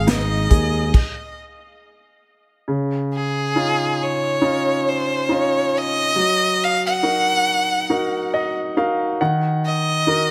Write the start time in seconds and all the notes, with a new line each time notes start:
Already playing: G#1 G#3 G#4 F5
0.07 D#4 D#5, snare, closed hi-hat
0.50 D#2 G#4, kick, closed hi-hat
0.94 kick, crash
2.68 C#3
3.14 G#4
3.56 C#4 D#4 F4
4.03 C#5
4.41 C#4 D#4 F4
4.89 C5
5.29 C#4 D#4 F4
5.34 C#5
5.77 D#5
6.16 F#3
6.64 F5
6.86 F#5
7.03 D#4 F#4 A#4
7.90 D#4 F#4 A#4
8.34 D#5
8.77 D#4 F#4 A#4 F5
9.21 D#3 F#5
9.65 D#5
10.07 D#4 F#4 A#4